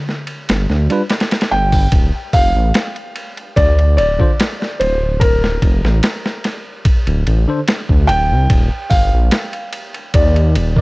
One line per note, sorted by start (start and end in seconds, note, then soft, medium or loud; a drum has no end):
0.09 snare soft
0.27 ride medium
0.49 0.67 G1 medium
0.49 snare loud
0.49 ride medium
0.69 0.88 D2 medium
0.69 snare soft
0.90 1.01 G3 medium
0.90 1.01 D4 medium
0.90 1.02 F4 medium
0.90 1.02 B4 medium
0.90 ride medium
1.10 snare medium
1.10 ride medium
1.10 darbuka tek medium
1.20 snare medium
1.20 ride medium
1.31 snare medium
1.31 ride medium
1.41 snare medium
1.41 ride medium
1.52 1.88 G1 medium
1.52 2.36 G5 loud
1.73 kick medium
1.73 open hi-hat medium
1.92 2.11 D1 medium
1.92 kick loud
1.92 ride medium
2.33 2.52 F1 loud
2.33 3.60 F5 loud
2.33 kick loud
2.33 open hi-hat medium
2.55 2.72 A1 medium
2.74 snare loud
2.74 ride medium
2.96 ride soft
3.16 ride medium
3.38 ride soft
3.56 4.00 D2 loud
3.56 3.96 D5 loud
3.56 kick loud
3.56 ride medium
3.79 ride soft
3.97 4.17 D1 medium
3.97 4.82 D5 medium
3.97 ride medium
4.19 4.30 D3 medium
4.19 4.30 D4 medium
4.19 4.30 F4 medium
4.19 4.31 C5 medium
4.19 kick loud
4.40 snare loud
4.40 ride medium
4.62 snare soft
4.80 5.59 D1 medium
4.80 5.22 C5 medium
4.80 ride medium
5.20 6.81 A#4 medium
5.20 kick loud
5.20 ride medium
5.44 snare soft
5.62 5.81 F1 loud
5.62 kick medium
5.62 ride medium
5.84 6.01 A1 loud
5.84 snare soft
6.03 snare loud
6.03 ride medium
6.26 snare soft
6.44 snare soft
6.44 ride medium
6.85 kick loud
6.85 ride medium
7.07 7.24 D1 medium
7.07 ride soft
7.27 7.46 A1 loud
7.27 ride medium
7.48 7.58 D3 medium
7.48 7.59 D4 medium
7.48 7.59 A4 medium
7.48 7.60 C5 medium
7.67 snare loud
7.67 ride medium
7.89 8.10 D2 medium
7.89 kick medium
8.07 8.32 D1 medium
8.07 8.93 G5 loud
8.07 ride medium
8.31 8.48 C2 medium
8.50 8.69 D#1 medium
8.50 kick loud
8.50 ride medium
8.90 9.10 G1 loud
8.90 10.10 F5 medium
8.90 kick medium
8.90 open hi-hat medium
9.13 9.30 A#1 loud
9.31 snare loud
9.31 ride medium
9.53 ride soft
9.73 ride medium
9.94 ride soft
10.14 10.58 D#2 loud
10.14 10.81 D5 medium
10.14 kick loud
10.14 ride medium
10.36 ride soft
10.55 10.75 D#1 medium
10.55 ride medium
10.76 10.81 D#3 medium
10.76 10.81 D#4 medium
10.76 10.81 A#4 medium
10.76 kick medium